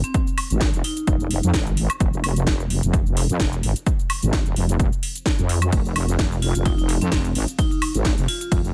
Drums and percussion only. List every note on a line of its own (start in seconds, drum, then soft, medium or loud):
0.04 closed hi-hat medium
0.04 shaker medium
0.14 kick loud
0.14 closed hi-hat medium
0.14 shaker medium
0.27 shaker soft
0.38 open hi-hat loud
0.38 high woodblock medium
0.50 closed hi-hat medium
0.50 shaker medium
0.61 kick loud
0.61 snare loud
0.61 closed hi-hat medium
0.61 shaker medium
0.74 closed hi-hat soft
0.74 shaker soft
0.84 open hi-hat loud
0.97 closed hi-hat medium
0.97 shaker medium
1.07 kick loud
1.07 closed hi-hat medium
1.07 shaker medium
1.20 shaker soft
1.31 open hi-hat loud
1.43 closed hi-hat medium
1.43 shaker medium
1.54 kick loud
1.54 snare loud
1.54 closed hi-hat medium
1.54 shaker medium
1.67 closed hi-hat soft
1.67 shaker soft
1.77 open hi-hat loud
1.90 closed hi-hat medium
1.90 high woodblock medium
1.90 shaker medium
2.00 kick loud
2.00 closed hi-hat medium
2.00 shaker medium
2.13 shaker soft
2.24 open hi-hat loud
2.24 high woodblock medium
2.36 closed hi-hat medium
2.36 shaker medium
2.47 kick loud
2.47 snare loud
2.47 closed hi-hat medium
2.47 shaker medium
2.60 shaker soft
2.70 open hi-hat loud
2.83 closed hi-hat medium
2.83 shaker medium
2.93 kick loud
2.93 closed hi-hat medium
2.93 shaker medium
3.06 shaker soft
3.17 open hi-hat loud
3.29 closed hi-hat medium
3.29 shaker medium
3.40 kick loud
3.40 snare loud
3.40 closed hi-hat medium
3.40 shaker medium
3.53 closed hi-hat soft
3.53 shaker soft
3.63 open hi-hat loud
3.76 closed hi-hat medium
3.76 shaker medium
3.86 kick loud
3.86 closed hi-hat medium
3.86 shaker medium
3.99 shaker soft
4.10 open hi-hat loud
4.10 high woodblock medium
4.23 closed hi-hat medium
4.23 shaker medium
4.33 kick loud
4.33 snare loud
4.33 closed hi-hat medium
4.33 shaker medium
4.46 closed hi-hat soft
4.46 shaker soft
4.56 open hi-hat medium
4.69 closed hi-hat medium
4.69 shaker medium
4.80 kick loud
4.80 closed hi-hat medium
4.80 shaker medium
4.92 shaker soft
5.03 open hi-hat loud
5.16 closed hi-hat soft
5.16 shaker medium
5.26 kick loud
5.26 snare loud
5.26 closed hi-hat medium
5.26 shaker medium
5.39 closed hi-hat soft
5.39 shaker soft
5.49 open hi-hat medium
5.62 closed hi-hat medium
5.62 high woodblock medium
5.62 shaker medium
5.72 kick loud
5.72 closed hi-hat medium
5.72 ride medium
5.72 shaker medium
5.85 shaker soft
5.96 open hi-hat loud
5.96 high woodblock medium
6.09 closed hi-hat soft
6.09 shaker medium
6.19 kick loud
6.19 snare loud
6.19 closed hi-hat medium
6.19 ride medium
6.19 shaker medium
6.32 shaker soft
6.42 open hi-hat medium
6.55 closed hi-hat medium
6.55 shaker medium
6.66 kick loud
6.66 closed hi-hat medium
6.66 ride medium
6.66 shaker medium
6.78 shaker soft
6.89 open hi-hat loud
7.01 closed hi-hat medium
7.01 shaker medium
7.12 kick loud
7.12 snare loud
7.12 closed hi-hat medium
7.12 ride medium
7.12 shaker medium
7.25 closed hi-hat soft
7.25 shaker soft
7.35 open hi-hat medium
7.48 closed hi-hat medium
7.48 shaker medium
7.59 kick loud
7.59 closed hi-hat medium
7.59 ride medium
7.59 shaker medium
7.71 shaker soft
7.82 open hi-hat loud
7.82 high woodblock medium
7.95 closed hi-hat medium
7.95 shaker medium
8.05 kick loud
8.05 snare loud
8.05 closed hi-hat medium
8.05 ride medium
8.05 shaker medium
8.18 closed hi-hat soft
8.18 shaker soft
8.28 open hi-hat medium
8.41 closed hi-hat medium
8.41 shaker medium
8.52 kick loud
8.52 closed hi-hat medium
8.52 ride medium
8.52 shaker medium
8.65 shaker soft